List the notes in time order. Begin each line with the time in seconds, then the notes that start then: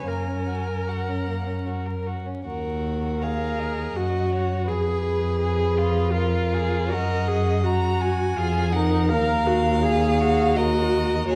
0.07 F#2 A#3 A#4 G#5
0.27 C#4
0.46 F#4
0.67 A#4
0.88 F#4 F#5
1.08 C#4
1.27 A#3
1.46 C#4
1.66 F#4
1.86 A#4
2.06 F#4
2.26 C#4
2.45 D#2 F#4 A#4
3.22 G#4 A#4 F5
3.59 D#5
3.95 F#2 F#4
4.32 C#5
4.68 F2 G#4 B4
5.05 G#4
5.41 G#4
5.77 F4
6.12 F4 A#4
6.53 G#4
6.90 F#2 F#4 A#4 D#5
7.28 G#4
7.64 F#4 A#5
8.01 G#5
8.37 F2 F4 G#4
8.72 D#4 A#4 F#5
9.09 D#2 A#4 F5
9.47 F#4
9.83 G#4
10.20 F#4
10.55 F#4 A#4 D#5
11.27 D#2 F#4 G#4 C#5